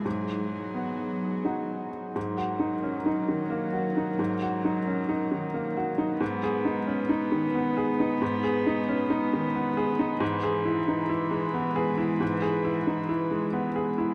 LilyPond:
<<
  \new Staff \with { instrumentName = "Analog synth pad" } { \time 3/4 \key gis \minor \tempo 4 = 90 <fis dis' gis'>2. | <fis dis' ais'>2.~ | <fis dis' ais'>2. | <gis dis' b'>2.~ |
<gis dis' b'>2. | <gis e' b'>2.~ | <gis e' b'>2. | }
  \new Staff \with { instrumentName = "Upright piano" } { \time 3/4 \key gis \minor gis,4 b4 <dis' fis'>4 | \tuplet 3/2 { gis,8 fis'8 dis'8 cis'8 dis'8 dis8 ais8 fis'8 dis'8 } | \tuplet 3/2 { gis,8 fis'8 dis'8 cis'8 dis'8 dis8 ais8 fis'8 dis'8 } | \tuplet 3/2 { gis,8 gis'8 dis'8 cis'8 dis'8 dis8 b8 gis'8 dis'8 } |
\tuplet 3/2 { gis,8 gis'8 dis'8 cis'8 dis'8 dis8 b8 gis'8 dis'8 } | \tuplet 3/2 { gis,8 gis'8 e'8 dis'8 e'8 gis8 b8 gis'8 e'8 } | \tuplet 3/2 { gis,8 gis'8 e'8 dis'8 e'8 gis8 b8 gis'8 e'8 } | }
  \new Staff \with { instrumentName = "Cello" } { \clef bass \time 3/4 \key gis \minor fis2~ fis8 r8 | fis2.~ | fis2. | b2.~ |
b2. | e2.~ | e2. | }
>>